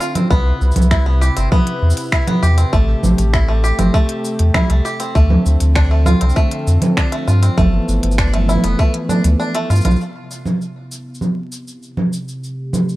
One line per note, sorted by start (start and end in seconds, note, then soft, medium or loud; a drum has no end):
0.00 0.27 D3 medium
0.00 0.27 C4 medium
0.00 0.27 F4 medium
0.00 0.14 F4 medium
0.00 shaker medium
0.15 0.29 C4 medium
0.15 closed hi-hat medium
0.15 low conga medium
0.15 shaker soft
0.30 0.53 C2 loud
0.30 2.71 C3 medium
0.30 0.90 B3 loud
0.30 2.71 E4 medium
0.30 2.71 B4 medium
0.30 kick loud
0.30 shaker soft
0.61 0.72 C2 loud
0.61 shaker soft
0.72 shaker soft
0.76 1.30 C2 medium
0.76 closed hi-hat medium
0.76 low conga medium
0.76 shaker soft
0.82 shaker medium
0.91 1.05 E4 medium
0.91 finger snap medium
0.91 kick loud
0.91 shaker soft
1.06 1.20 B3 medium
1.21 1.35 G4 medium
1.21 shaker medium
1.37 1.48 G1 medium
1.37 1.50 C4 medium
1.37 closed hi-hat medium
1.37 shaker soft
1.52 2.11 B3 loud
1.52 kick loud
1.52 low conga medium
1.52 shaker soft
1.67 closed hi-hat soft
1.82 1.93 E2 medium
1.90 shaker medium
1.97 closed hi-hat medium
1.97 shaker soft
2.00 shaker soft
2.03 shaker soft
2.06 shaker soft
2.08 shaker soft
2.11 2.26 E4 medium
2.11 finger snap medium
2.11 kick loud
2.11 shaker soft
2.13 shaker soft
2.27 2.41 B3 medium
2.27 closed hi-hat soft
2.27 low conga medium
2.43 2.65 E2 medium
2.43 2.56 G4 medium
2.43 shaker medium
2.58 2.71 C4 medium
2.58 closed hi-hat medium
2.58 shaker soft
2.73 2.95 A1 loud
2.73 5.13 C3 medium
2.73 3.32 A3 medium
2.73 5.13 A3 medium
2.73 5.13 G4 medium
2.73 kick loud
2.73 shaker soft
3.03 3.14 A1 medium
3.03 low conga medium
3.03 shaker medium
3.18 3.72 A1 medium
3.18 closed hi-hat medium
3.18 shaker soft
3.33 3.47 E4 medium
3.33 finger snap medium
3.33 kick medium
3.33 shaker soft
3.48 3.62 A3 medium
3.64 3.77 G4 medium
3.64 shaker medium
3.79 3.90 G1 medium
3.79 3.93 C4 medium
3.79 closed hi-hat medium
3.79 low conga medium
3.79 shaker soft
3.94 4.53 A3 loud
3.94 kick loud
3.94 shaker soft
4.09 closed hi-hat soft
4.25 shaker medium
4.39 4.51 E2 medium
4.39 closed hi-hat medium
4.54 4.68 E4 medium
4.54 finger snap medium
4.54 kick loud
4.54 low conga medium
4.54 shaker soft
4.70 4.81 C2 loud
4.70 4.83 A3 medium
4.70 closed hi-hat soft
4.85 4.99 G4 medium
4.85 shaker medium
5.00 5.14 C4 medium
5.00 closed hi-hat medium
5.00 shaker soft
5.15 5.37 D2 loud
5.15 7.55 D3 medium
5.15 9.96 F3 loud
5.15 5.74 A3 loud
5.15 7.55 C4 medium
5.15 kick loud
5.15 shaker soft
5.30 low conga medium
5.46 5.57 D2 loud
5.46 shaker medium
5.60 6.15 D2 medium
5.60 closed hi-hat medium
5.60 shaker soft
5.76 5.89 D4 medium
5.76 finger snap medium
5.76 kick loud
5.76 shaker soft
5.91 6.05 A3 medium
6.06 6.20 F4 medium
6.06 low conga medium
6.06 shaker medium
6.21 6.33 C2 medium
6.21 6.35 C4 medium
6.21 closed hi-hat medium
6.29 shaker soft
6.36 6.95 A3 loud
6.36 kick loud
6.36 shaker soft
6.51 closed hi-hat soft
6.67 6.78 F2 medium
6.67 shaker medium
6.82 closed hi-hat medium
6.82 low conga medium
6.82 shaker soft
6.97 7.11 D4 medium
6.97 finger snap medium
6.97 kick medium
6.97 shaker soft
7.12 7.26 A3 medium
7.12 closed hi-hat soft
7.28 7.49 G2 medium
7.28 7.41 F4 medium
7.28 shaker medium
7.43 7.56 C4 medium
7.43 closed hi-hat medium
7.43 shaker soft
7.58 7.80 G1 loud
7.58 9.98 E3 medium
7.58 8.17 A3 loud
7.58 9.98 A3 medium
7.58 9.98 B3 medium
7.58 kick loud
7.58 low conga medium
7.58 shaker soft
7.88 7.99 G1 loud
7.88 shaker medium
8.03 8.57 G1 medium
8.03 closed hi-hat medium
8.11 shaker soft
8.18 8.32 D4 medium
8.18 finger snap loud
8.18 kick loud
8.18 shaker soft
8.34 8.47 A3 medium
8.34 closed hi-hat soft
8.34 low conga soft
8.41 low conga soft
8.48 8.62 E4 medium
8.48 low conga medium
8.48 shaker medium
8.56 low conga medium
8.64 8.75 F1 medium
8.64 8.78 B3 medium
8.64 closed hi-hat medium
8.64 shaker soft
8.79 8.93 A3 loud
8.79 kick loud
8.79 shaker soft
8.94 closed hi-hat soft
9.09 9.23 D4 medium
9.09 low conga medium
9.09 shaker medium
9.24 9.35 D2 medium
9.24 closed hi-hat medium
9.24 shaker soft
9.40 9.53 D4 medium
9.40 shaker soft
9.55 9.68 A3 loud
9.55 closed hi-hat soft
9.70 9.81 G2 medium
9.70 9.84 F4 medium
9.70 shaker medium
9.76 shaker medium
9.81 shaker soft
9.85 9.96 B1 loud
9.85 9.99 F4 medium
9.85 closed hi-hat medium
9.85 low conga medium
9.85 shaker soft
9.91 shaker soft
9.96 shaker soft
10.00 12.96 C3 medium
10.00 12.40 B3 medium
10.00 12.40 E4 medium
10.00 shaker soft
10.31 shaker medium
10.45 low conga medium
10.45 shaker soft
10.61 shaker soft
10.92 shaker medium
11.15 shaker soft
11.21 low conga medium
11.21 shaker soft
11.52 shaker medium
11.68 shaker soft
11.83 shaker soft
11.97 low conga medium
12.13 shaker medium
12.28 shaker soft
12.43 12.96 A3 medium
12.43 12.96 G4 medium
12.43 shaker soft
12.73 low conga medium
12.73 shaker medium
12.89 shaker soft